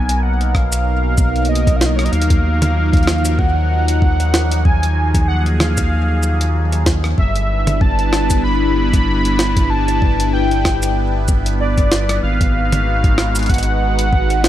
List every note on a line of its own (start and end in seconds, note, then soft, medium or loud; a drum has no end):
0.00 2.10 B1 medium
0.00 7.14 F#3 medium
0.00 7.14 A#3 medium
0.00 2.08 B3 medium
0.00 7.14 D#4 medium
0.00 4.61 A#4 medium
0.00 0.24 G#5 loud
0.09 closed hi-hat medium
0.23 0.49 F#5 loud
0.41 closed hi-hat soft
0.49 0.56 F#5 medium
0.54 1.50 F5 loud
0.54 kick loud
0.54 cross-stick medium
0.73 closed hi-hat medium
0.73 shaker medium
1.18 kick loud
1.18 shaker medium
1.36 closed hi-hat soft
1.45 1.78 D#5 loud
1.45 closed hi-hat soft
1.55 closed hi-hat medium
1.67 kick loud
1.67 closed hi-hat medium
1.76 1.87 F5 medium
1.81 snare loud
1.86 1.97 D#5 medium
1.96 2.06 C#5 medium
1.96 cross-stick medium
1.96 closed hi-hat soft
2.04 2.11 D#5 medium
2.04 closed hi-hat soft
2.12 7.15 D#2 medium
2.12 7.14 F3 medium
2.12 3.40 F5 loud
2.12 closed hi-hat soft
2.22 closed hi-hat medium
2.30 kick loud
2.30 closed hi-hat medium
2.62 closed hi-hat medium
2.62 mid tom medium
2.93 kick loud
2.93 closed hi-hat soft
2.97 closed hi-hat soft
3.03 closed hi-hat soft
3.07 cross-stick medium
3.07 snare loud
3.07 closed hi-hat soft
3.13 closed hi-hat soft
3.18 closed hi-hat soft
3.25 closed hi-hat medium
3.25 shaker medium
3.39 4.66 F#5 loud
3.39 kick loud
3.88 closed hi-hat medium
4.02 kick loud
4.20 closed hi-hat medium
4.34 cross-stick medium
4.34 snare loud
4.52 closed hi-hat medium
4.65 7.15 G#4 medium
4.65 5.27 G#5 loud
4.65 kick loud
4.83 closed hi-hat medium
5.14 kick loud
5.14 closed hi-hat medium
5.28 5.42 F#5 medium
5.46 closed hi-hat soft
5.60 6.82 F5 medium
5.60 cross-stick medium
5.60 snare loud
5.60 mid tom medium
5.78 kick loud
5.78 closed hi-hat medium
5.78 shaker medium
6.23 shaker medium
6.41 closed hi-hat medium
6.72 closed hi-hat medium
6.86 kick loud
6.86 snare loud
7.04 cross-stick medium
7.18 12.20 G1 medium
7.18 12.19 G3 medium
7.18 14.49 B3 medium
7.18 12.19 D4 medium
7.18 12.19 E4 medium
7.18 14.49 B4 medium
7.18 7.83 E5 loud
7.18 kick loud
7.36 closed hi-hat medium
7.67 closed hi-hat medium
7.67 mid tom medium
7.81 8.43 A5 loud
7.81 kick loud
7.99 closed hi-hat soft
8.13 cross-stick medium
8.13 snare loud
8.30 kick loud
8.30 closed hi-hat medium
8.30 shaker medium
8.44 9.71 B5 loud
8.93 kick loud
8.93 closed hi-hat medium
9.25 closed hi-hat medium
9.39 cross-stick medium
9.39 snare loud
9.57 kick loud
9.57 closed hi-hat medium
9.70 10.33 A5 loud
9.88 closed hi-hat medium
10.02 kick loud
10.20 closed hi-hat medium
10.33 11.24 G5 medium
10.51 closed hi-hat soft
10.65 kick medium
10.65 cross-stick medium
10.65 snare loud
10.83 closed hi-hat medium
10.83 shaker medium
11.28 kick loud
11.28 shaker medium
11.46 closed hi-hat medium
11.60 12.19 D5 medium
11.78 kick loud
11.78 closed hi-hat medium
11.92 snare loud
12.09 cross-stick medium
12.09 closed hi-hat medium
12.23 14.49 G#1 medium
12.23 14.49 G#3 medium
12.23 14.49 D#4 medium
12.23 14.49 F#4 medium
12.23 13.51 F5 loud
12.41 kick loud
12.41 closed hi-hat medium
12.72 closed hi-hat medium
12.72 mid tom medium
13.04 kick loud
13.04 closed hi-hat soft
13.18 cross-stick medium
13.18 snare loud
13.36 closed hi-hat soft
13.36 shaker medium
13.39 closed hi-hat soft
13.43 closed hi-hat soft
13.46 14.49 F#5 loud
13.46 kick loud
13.46 closed hi-hat soft
13.50 closed hi-hat soft
13.54 closed hi-hat soft
13.58 closed hi-hat medium
13.63 closed hi-hat medium
13.99 closed hi-hat medium
14.13 kick loud
14.30 closed hi-hat medium
14.44 cross-stick medium
14.44 snare loud